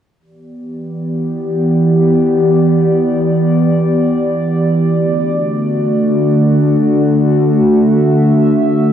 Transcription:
ambient pad
0.20 E3 B3 G4 D5
4.90 D3 A3 F#4
7.26 E5

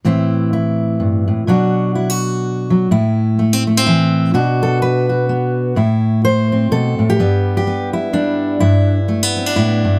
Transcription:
steel-string acoustic guitar
0.05 A2 E3 C4 E4
0.53 E4
1.00 G2
1.28 A2
1.47 B2 F#3 D4 F#4
1.95 E4
2.10 F#4
2.70 F#3
2.91 A2 E4
3.39 A3
3.53 C4
3.67 A3
3.77 C4
3.86 E3 E4
4.34 B2 B3 D4 F#4
4.63 A4
4.82 B4
5.09 F#4
5.29 B3
5.76 A2 E4
6.25 C5
6.52 C4
6.71 B2 A4
6.99 A2
7.10 G4
7.19 G2 G3 B3
7.57 G4
7.67 B3
7.93 E4
8.13 G3 D4
8.60 G2 E4
9.08 A3
9.23 B3
9.36 C4
9.46 D4
9.56 A2 E4
9.84 G2

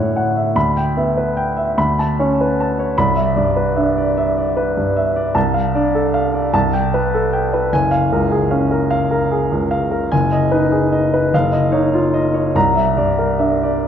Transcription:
grand piano
Already playing: D2 A2 C#4 C#5 E5 F#5 C#6
0.16 F#5
0.36 E5
0.56 D2 B5
0.77 G5
0.97 B3 E5
1.17 B4
1.37 G5
1.57 E5
1.78 D2 B5
1.99 A5
2.19 C#4 C#5
2.41 B4
2.60 A5
2.79 C#5
2.98 C2 B5
3.16 E5
3.36 G2 D5
3.56 B4
3.76 D4 E5
3.97 D5
4.17 E5
4.38 D5
4.57 B4
4.77 G2
4.96 E5
5.16 D5
5.35 C2 A5
5.54 F5
5.75 D4 D5
5.95 A4
6.14 F5
6.34 D5
6.53 C2 A5
6.73 G5
6.94 B4
7.14 A4
7.33 G5
7.53 B4
7.73 F#1 G#5
7.91 F5
8.12 C#2 A#4
8.32 G#4
8.51 C#4 F5
8.71 A#4
8.90 F5
9.11 A#4
9.31 G#4
9.52 C#2
9.71 F5
9.91 A#4
10.12 F#1 G#5
10.32 D#5
10.51 D#4 B4
10.72 G#4
10.92 D#5
11.14 B4
11.34 F#1 F5
11.52 D#5
11.71 D#4 C#5
11.94 F4
12.14 D#5
12.34 C#5
12.55 C2 A#5
12.75 E5
12.97 G2 D5
13.19 A#4
13.39 D4 E5
13.63 D5

